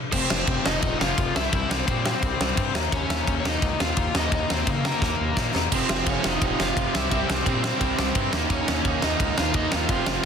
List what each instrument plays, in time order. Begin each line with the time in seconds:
0.12 analog synth bass F1, distorted electric guitar F2 C3 F3, overdriven electric guitar C4 C5, kick, crash
0.30 analog synth bass F1, snare
0.47 analog synth bass F1, distorted electric guitar F2 C3 F3, kick, ride
0.65 analog synth bass F1, distorted electric guitar F2 C3 F3, overdriven electric guitar D#4 D#5, snare
0.81 analog synth bass D#1, distorted electric guitar F2 C3 F3, overdriven electric guitar D#4 D#5, kick, ride
1.00 analog synth bass F1, overdriven electric guitar F4 F5, snare
1.18 analog synth bass F1, distorted electric guitar F2 C3 F3, kick, ride
1.35 analog synth bass C2, distorted electric guitar C3 G3 C4, overdriven electric guitar E4 E5, snare
1.52 analog synth bass C2, distorted electric guitar C3 G3 C4, overdriven electric guitar E4 E5, kick, ride
1.69 analog synth bass C2, overdriven electric guitar C4 C5, snare
1.87 analog synth bass A#2, distorted electric guitar C3 G3 C4, overdriven electric guitar C4 C5, kick, ride
2.05 distorted electric guitar C3 G3 C4, overdriven electric guitar C4 C5, snare
2.22 analog synth bass C2, distorted electric guitar C3 G3 C4, kick, ride
2.40 analog synth bass C2, snare
2.56 analog synth bass G2, distorted electric guitar C3 G3 C4, kick, ride
2.73 analog synth bass D#2, distorted electric guitar D#3 A#3 D#4, snare
2.91 analog synth bass D#2, distorted electric guitar D#3 A#3 D#4, overdriven electric guitar C#4 C#5, kick, ride
3.09 analog synth bass D#2, snare
3.27 analog synth bass D#2, distorted electric guitar D#3 A#3 D#4, kick, ride
3.40 overdriven electric guitar C#5
3.44 analog synth bass D#2, distorted electric guitar D#3 A#3 D#4, snare
3.48 overdriven electric guitar D#4 D#5
3.60 analog synth bass C#2, distorted electric guitar D#3 A#3 D#4, kick, ride
3.80 analog synth bass D#2, overdriven electric guitar F4 F5, snare
3.95 analog synth bass D#2, distorted electric guitar D#3 A#3 D#4, kick, ride
4.14 analog synth bass D#2, distorted electric guitar D#3 A#3 D#4, overdriven electric guitar D#4 D#5, snare
4.31 analog synth bass D#2, distorted electric guitar D#3 A#3 D#4, overdriven electric guitar D#5, kick, ride
4.35 overdriven electric guitar D#4
4.50 analog synth bass D#2, overdriven electric guitar C4 C5, snare
4.66 analog synth bass C#3, distorted electric guitar D#3 A#3 D#4, kick, ride
4.70 overdriven electric guitar A#3 A#4
4.84 distorted electric guitar D#3 A#3 D#4, overdriven electric guitar A#3 A#4, snare
5.01 analog synth bass D#2, distorted electric guitar D#3 A#3 D#4, kick, snare
5.21 analog synth bass D#2
5.37 analog synth bass A#2, distorted electric guitar D#3 A#3 D#4, kick, snare
5.54 analog synth bass E2, distorted electric guitar D#3 A#3 D#4, snare
5.71 analog synth bass F1, distorted electric guitar F2 C3 F3, overdriven electric guitar C4 C5, kick, crash
5.89 analog synth bass F1, snare
6.06 analog synth bass F1, distorted electric guitar F2 C3 F3, overdriven electric guitar C#4 C#5, kick, ride
6.24 analog synth bass F1, distorted electric guitar F2 C3 F3, snare
6.28 overdriven electric guitar D#4 D#5
6.41 analog synth bass D#1, distorted electric guitar F2 C3 F3, kick, ride
6.60 analog synth bass F1, overdriven electric guitar F4 F5, snare
6.76 analog synth bass F1, distorted electric guitar F2 C3 F3, kick, ride
6.93 analog synth bass C2, distorted electric guitar C3 G3 C4, overdriven electric guitar E4 E5, snare
7.11 analog synth bass C2, distorted electric guitar C3 G3 C4, overdriven electric guitar E4 E5, kick, ride
7.30 analog synth bass C2, overdriven electric guitar C4 C5, snare
7.46 analog synth bass A#2, distorted electric guitar C3 G3 C4, overdriven electric guitar C4 C5, kick, ride
7.64 distorted electric guitar C3 G3 C4, overdriven electric guitar C4 C5, snare
7.81 analog synth bass C2, distorted electric guitar C3 G3 C4, kick, ride
7.99 analog synth bass C2, snare
8.15 analog synth bass G2, distorted electric guitar C3 G3 C4, kick, ride
8.33 analog synth bass D#2, distorted electric guitar D#3 A#3 D#4, snare
8.50 analog synth bass D#2, distorted electric guitar D#3 A#3 D#4, overdriven electric guitar C#4 C#5, kick, ride
8.68 analog synth bass D#2, snare
8.85 analog synth bass D#2, distorted electric guitar D#3 A#3 D#4, kick, ride
9.02 analog synth bass D#2, distorted electric guitar D#3 A#3 D#4, overdriven electric guitar D#4 D#5, snare
9.20 analog synth bass C#2, distorted electric guitar D#3 A#3 D#4, kick, ride
9.38 analog synth bass D#2, overdriven electric guitar F4 F5, snare
9.54 analog synth bass D#2, distorted electric guitar D#3 A#3 D#4, overdriven electric guitar D#4 D#5, kick, ride
9.72 analog synth bass D#2, distorted electric guitar D#3 A#3 D#4, overdriven electric guitar F4 F5, snare
9.89 analog synth bass F1, distorted electric guitar F2 C3 F3, kick, ride
10.06 analog synth bass F1, snare